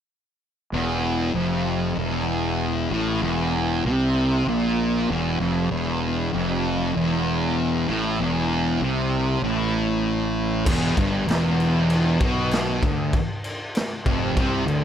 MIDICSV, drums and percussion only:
0, 0, Header, 1, 2, 480
1, 0, Start_track
1, 0, Tempo, 623701
1, 553, Time_signature, 4, 2, 24, 8
1, 5832, Tempo, 617284
1, 11481, End_track
2, 0, Start_track
2, 0, Title_t, "Drums"
2, 8232, Note_on_c, 9, 36, 115
2, 8232, Note_on_c, 9, 49, 115
2, 8232, Note_on_c, 9, 57, 82
2, 8309, Note_off_c, 9, 36, 0
2, 8310, Note_off_c, 9, 49, 0
2, 8310, Note_off_c, 9, 57, 0
2, 8472, Note_on_c, 9, 36, 108
2, 8474, Note_on_c, 9, 57, 60
2, 8550, Note_off_c, 9, 36, 0
2, 8551, Note_off_c, 9, 57, 0
2, 8714, Note_on_c, 9, 57, 80
2, 8731, Note_on_c, 9, 38, 122
2, 8792, Note_off_c, 9, 57, 0
2, 8809, Note_off_c, 9, 38, 0
2, 8959, Note_on_c, 9, 57, 63
2, 9037, Note_off_c, 9, 57, 0
2, 9191, Note_on_c, 9, 57, 79
2, 9269, Note_off_c, 9, 57, 0
2, 9429, Note_on_c, 9, 57, 65
2, 9432, Note_on_c, 9, 36, 112
2, 9507, Note_off_c, 9, 57, 0
2, 9510, Note_off_c, 9, 36, 0
2, 9669, Note_on_c, 9, 57, 77
2, 9686, Note_on_c, 9, 38, 113
2, 9747, Note_off_c, 9, 57, 0
2, 9764, Note_off_c, 9, 38, 0
2, 9913, Note_on_c, 9, 36, 106
2, 9916, Note_on_c, 9, 57, 58
2, 9991, Note_off_c, 9, 36, 0
2, 9993, Note_off_c, 9, 57, 0
2, 10150, Note_on_c, 9, 57, 77
2, 10152, Note_on_c, 9, 36, 114
2, 10228, Note_off_c, 9, 57, 0
2, 10230, Note_off_c, 9, 36, 0
2, 10390, Note_on_c, 9, 57, 68
2, 10468, Note_off_c, 9, 57, 0
2, 10629, Note_on_c, 9, 57, 87
2, 10647, Note_on_c, 9, 38, 113
2, 10707, Note_off_c, 9, 57, 0
2, 10724, Note_off_c, 9, 38, 0
2, 10872, Note_on_c, 9, 36, 107
2, 10873, Note_on_c, 9, 57, 62
2, 10950, Note_off_c, 9, 36, 0
2, 10950, Note_off_c, 9, 57, 0
2, 11112, Note_on_c, 9, 36, 103
2, 11112, Note_on_c, 9, 57, 76
2, 11190, Note_off_c, 9, 36, 0
2, 11190, Note_off_c, 9, 57, 0
2, 11354, Note_on_c, 9, 57, 58
2, 11432, Note_off_c, 9, 57, 0
2, 11481, End_track
0, 0, End_of_file